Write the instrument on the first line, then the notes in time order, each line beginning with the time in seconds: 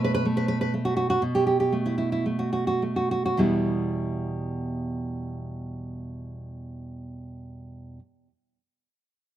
nylon-string guitar
Already playing: B2 A3
0.04 B4
0.14 B4
0.25 A3
0.37 B4
0.48 B4
0.61 B4
0.74 A3
0.85 F#4
0.97 F#4
1.10 F#4
1.22 B2
1.35 G4
1.47 G4
1.60 G4
1.72 A3
1.86 E4
1.98 E4
2.12 E4
2.26 A3
2.39 F#4
2.53 F#4
2.67 F#4
2.82 A3
2.96 F#4
3.11 F#4
3.26 F#4
3.37 E2 B2 G3 B3 E4